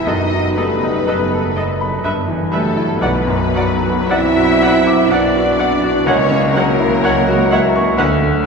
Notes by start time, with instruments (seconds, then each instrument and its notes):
0.06 double bass section F#1, grand piano F#2, french horn section B3, cello section D#4, viola section A4 D#5, violin section D#5
0.32 grand piano F#3
0.56 french horn section G3, grand piano A3, cello section B3, viola section A4 D#5, violin section B4
0.83 grand piano D#4
1.07 double bass section F#1, viola section A4 D#5, grand piano B4
1.33 grand piano A4
1.57 viola section A4 D#5, grand piano D#5
1.81 grand piano B5
2.04 double bass section G1, grand piano G2, viola section B4 E5
2.28 grand piano E3
2.51 french horn section F#3, grand piano G3, cello section A3, violin section A4, viola section B4 E5
2.76 grand piano E4
3.01 grand piano B1, double bass section B1, french horn section F#3, cello section B3, violin section B4, viola section D5 F#5
3.27 grand piano F#2
3.55 grand piano F#3, viola section D5 F#5
3.83 grand piano F#4
4.10 double bass section B1, french horn section C4, cello section E4, viola section D5 F#5, grand piano D5, violin section E5
4.37 grand piano F#4
4.62 viola section D5 F#5, grand piano F#5
4.87 grand piano D6
5.10 double bass section B1, french horn section B3, cello section D4, violin section D5, viola section D5 F#5, grand piano F#5
5.36 grand piano F#4
5.59 viola section D5 F#5, grand piano D5
5.84 grand piano F#4
6.06 grand piano C#2, double bass section C#2, french horn section A#3, cello section C#4, violin section C#5, viola section C#5 F#5
6.31 grand piano C#3
6.54 grand piano F#3, french horn section F#3, cello section A#3, violin section A#4, viola section C#5 F#5
6.79 grand piano E4
7.04 double bass section C#2, grand piano C#5, viola section C#5 F#5
7.28 grand piano F#4
7.51 viola section C#5 F#5, grand piano E5
7.75 grand piano C#6
7.98 grand piano D2, double bass section D2, viola section B4 F#5
8.22 grand piano D3